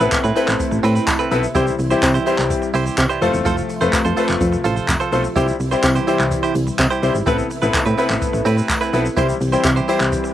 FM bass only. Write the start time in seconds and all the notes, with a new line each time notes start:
0.00 A1
0.12 A2
0.24 A2
0.48 A1
0.72 A1
0.84 A2
1.31 B1
1.55 C2
1.79 C2
2.03 C3
2.38 C2
2.74 C2
2.98 C3
3.22 F1
3.34 E1
3.46 F1
3.81 F1
3.93 F2
4.05 F2
4.29 F1
4.41 F2
4.65 A1
4.89 F1
5.12 B1
5.36 C2
5.60 C2
5.84 C3
6.20 C2
6.55 C2
6.79 C3
7.03 C2
7.15 G#1
7.27 A1
7.62 A1
7.74 A2
7.86 A2
8.10 A1
8.34 A1
8.46 A2
8.93 B1
9.17 C2
9.41 C2
9.65 C3
10.00 C2